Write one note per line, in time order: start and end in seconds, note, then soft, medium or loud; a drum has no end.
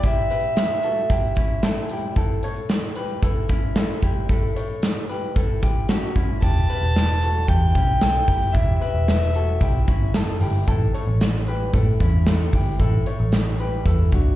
0.03 0.30 E4 medium
0.03 0.30 G4 medium
0.03 1.64 E5 loud
0.03 kick medium
0.03 closed hi-hat medium
0.30 0.81 G4 medium
0.30 0.81 B4 medium
0.30 closed hi-hat medium
0.56 snare medium
0.56 closed hi-hat medium
0.83 1.10 F#4 medium
0.83 1.10 A4 medium
0.83 closed hi-hat medium
1.10 1.36 E4 medium
1.10 1.37 G4 medium
1.10 kick medium
1.10 closed hi-hat medium
1.36 1.64 C#4 soft
1.36 1.63 E4 medium
1.36 kick medium
1.36 closed hi-hat medium
1.63 1.90 E4 medium
1.63 1.91 A4 medium
1.63 snare loud
1.63 closed hi-hat medium
1.89 2.16 E4 soft
1.89 2.17 G4 medium
1.89 closed hi-hat medium
2.16 2.44 E4 medium
2.16 2.43 A4 medium
2.16 kick medium
2.16 closed hi-hat medium
2.43 2.94 A4 medium
2.43 2.94 C#5 medium
2.43 closed hi-hat medium
2.69 snare medium
2.69 closed hi-hat medium
2.95 3.22 G4 medium
2.95 3.23 B4 medium
2.95 closed hi-hat medium
3.22 3.49 E4 medium
3.22 3.50 A4 medium
3.22 kick medium
3.22 closed hi-hat medium
3.49 3.77 C#4 medium
3.49 3.76 E4 medium
3.49 kick medium
3.49 closed hi-hat medium
3.76 4.02 E4 medium
3.76 4.02 A4 medium
3.76 snare loud
3.76 closed hi-hat medium
4.02 4.29 E4 medium
4.02 4.29 G4 medium
4.02 kick medium
4.02 closed hi-hat medium
4.29 4.56 E4 medium
4.29 4.56 A4 medium
4.29 kick medium
4.29 closed hi-hat medium
4.56 5.07 A4 medium
4.56 5.06 C#5 medium
4.56 closed hi-hat medium
4.83 snare medium
4.83 closed hi-hat medium
5.09 5.36 G4 medium
5.09 5.36 B4 medium
5.09 closed hi-hat medium
5.36 5.63 E4 medium
5.36 5.62 A4 medium
5.36 kick medium
5.36 closed hi-hat medium
5.62 5.90 E4 soft
5.62 5.89 G4 medium
5.62 kick medium
5.62 closed hi-hat medium
5.89 6.16 C#4 medium
5.89 6.16 F#4 medium
5.89 snare loud
5.89 closed hi-hat medium
6.16 6.43 C#4 medium
6.16 6.43 E4 medium
6.16 kick medium
6.16 closed hi-hat medium
6.42 6.65 E1 medium
6.42 6.69 E4 medium
6.42 6.69 G4 medium
6.42 7.49 A5 loud
6.42 kick medium
6.42 closed hi-hat medium
6.69 7.20 G4 medium
6.69 7.19 B4 medium
6.69 closed hi-hat medium
6.81 7.45 E1 medium
6.96 snare medium
6.96 closed hi-hat medium
7.22 7.49 F#4 medium
7.22 7.49 A4 medium
7.22 closed hi-hat medium
7.48 7.71 E2 medium
7.48 7.74 E4 medium
7.48 7.76 G4 medium
7.48 8.54 G5 medium
7.48 kick medium
7.48 closed hi-hat medium
7.75 8.20 B1 medium
7.75 8.02 C#4 medium
7.75 8.01 E4 medium
7.75 kick medium
7.75 closed hi-hat medium
8.01 8.28 E4 medium
8.01 8.28 A4 medium
8.01 snare medium
8.01 closed hi-hat medium
8.28 8.51 F#1 medium
8.28 8.54 E4 medium
8.28 8.53 G4 medium
8.28 kick medium
8.28 open hi-hat medium
8.52 8.77 E1 loud
8.52 8.81 E4 medium
8.52 8.81 G4 medium
8.52 8.79 E5 medium
8.52 kick loud
8.52 closed hi-hat medium
8.80 9.32 G4 medium
8.80 9.31 B4 medium
8.80 9.83 E5 medium
8.80 closed hi-hat medium
8.94 9.58 E1 loud
9.08 snare medium
9.08 closed hi-hat medium
9.34 9.61 F#4 medium
9.34 9.62 A4 medium
9.34 closed hi-hat medium
9.61 9.84 B1 medium
9.61 9.87 E4 medium
9.61 9.88 G4 medium
9.61 kick medium
9.61 closed hi-hat medium
9.88 10.10 G1 medium
9.88 10.15 C#4 medium
9.88 10.15 E4 medium
9.88 kick medium
9.88 closed hi-hat medium
10.14 10.37 F#1 medium
10.14 10.41 E4 medium
10.14 10.41 A4 medium
10.14 snare medium
10.14 closed hi-hat medium
10.41 10.64 G1 medium
10.41 10.68 E4 medium
10.41 10.68 G4 medium
10.41 open hi-hat medium
10.68 10.90 A1 loud
10.68 10.95 E4 medium
10.68 10.94 A4 medium
10.68 kick medium
10.68 closed hi-hat medium
10.94 11.45 A4 medium
10.94 11.44 C#5 medium
10.94 closed hi-hat medium
11.07 11.70 A1 loud
11.21 snare medium
11.21 closed hi-hat medium
11.46 11.74 G4 medium
11.46 11.74 B4 medium
11.46 closed hi-hat medium
11.73 11.96 A2 medium
11.73 12.00 E4 medium
11.73 12.00 A4 medium
11.73 kick medium
11.73 closed hi-hat medium
12.00 12.46 E2 medium
12.00 12.28 C#4 medium
12.00 12.27 E4 medium
12.00 kick medium
12.00 closed hi-hat medium
12.26 12.54 E4 medium
12.26 12.54 A4 medium
12.26 snare loud
12.26 closed hi-hat medium
12.53 12.76 G1 medium
12.53 12.80 E4 soft
12.53 12.80 G4 medium
12.53 kick medium
12.53 open hi-hat medium
12.79 13.02 A1 loud
12.79 13.07 E4 medium
12.79 13.07 A4 medium
12.79 kick medium
12.79 closed hi-hat medium
13.06 13.57 A4 medium
13.06 13.57 C#5 medium
13.06 closed hi-hat medium
13.20 13.83 A1 medium
13.32 snare medium
13.32 closed hi-hat medium
13.58 13.87 G4 medium
13.58 13.86 B4 medium
13.58 closed hi-hat medium
13.86 14.08 E2 medium
13.86 14.14 E4 medium
13.86 14.13 A4 medium
13.86 kick medium
13.86 closed hi-hat medium
14.12 14.35 C#2 medium
14.12 14.36 D4 soft
14.12 14.36 F#4 medium
14.12 kick medium
14.12 closed hi-hat medium